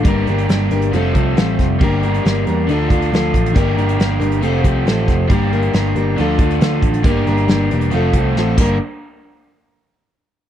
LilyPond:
<<
  \new Staff \with { instrumentName = "Overdriven electric guitar" } { \time 4/4 \key g \minor \tempo 4 = 137 <g d' g' bes'>2 <f a c' f' a'>2 | <g d' g' bes'>2 <d d' f' a'>2 | <g d' g' bes'>2 <f a c' f' a'>2 | <g d' g' bes'>2 <d d' f' a'>2 |
<g d' g' bes'>2 <f a c' f' a'>4. <g, d g bes d' bes'>8 | r1 | }
  \new Staff \with { instrumentName = "Steel-string acoustic guitar" } { \time 4/4 \key g \minor <g, d g bes d' bes'>8 <g bes d' bes'>8 <g bes d' bes'>8 <g bes d' bes'>8 <f g c' f' a'>8 <c' f' a'>8 <g c' f' a'>4 | <g, d g bes d' bes'>8 <g bes d' bes'>8 <g bes d' bes'>8 <g bes d' bes'>8 <d f d' f' a'>8 <d' f' a'>8 <f d' f' a'>4 | <g, d g bes d' bes'>8 <g bes d' bes'>8 <g bes d' bes'>8 <g bes d' bes'>8 <f c' g' a'>8 <c' g' a'>8 <f c' g' a'>4 | <g, d g bes g' bes'>8 <g bes g' bes'>8 <g bes g' bes'>8 <g bes g' bes'>8 <d f d' f' a'>8 <d' f' a'>8 <f d' f' a'>4 |
<g, d g bes d' bes'>8 <g bes d' bes'>8 <g bes d' bes'>8 <g bes d' bes'>8 <f c' f' a'>8 <c' f' a'>8 <f c' f' a'>8 <g, d g bes d' bes'>8 | r1 | }
  \new Staff \with { instrumentName = "Picked electric bass" } { \clef bass \time 4/4 \key g \minor g,,8 g,,8 g,,8 g,,8 f,,8 c,8 a,,8 f,,8 | g,,4 g,,8 e,8 d,8 d,8 d,8 a,,8 | g,,8 g,,8 g,,8 g,,8 f,,8 c,8 a,,8 f,,8 | g,,4 g,,8 g,,8 d,8 d,8 d,8 a,,8 |
g,,8 g,,8 g,,8 e,,8 f,,8 c,8 a,,8 g,,8 | r1 | }
  \new DrumStaff \with { instrumentName = "Drums" } \drummode { \time 4/4 <hh bd>8 hh16 hh16 <hh sn>8 hh16 hh16 hh8 <hh bd>8 <hh sn>8 <hh bd sn>8 | <hh bd>8 hh16 hh16 <hh sn>8 hh8 hh8 <hh bd>16 hh16 <hh sn>8 <hh bd>16 hh16 | <hh bd>8 hh16 hh16 <hh sn>8 hh16 hh16 hh8 <hh bd>8 <hh sn>8 <hh bd sn>8 | <hh bd>8 hh16 hh16 <hh sn>8 hh8 hh8 <hh bd>16 hh16 <hh sn>8 <hh bd>16 hh16 |
<hh bd>8 hh16 hh16 <hh sn>8 hh16 hh16 hh8 <hh bd>8 sn8 <cymc bd>8 | r4 r4 r4 r4 | }
>>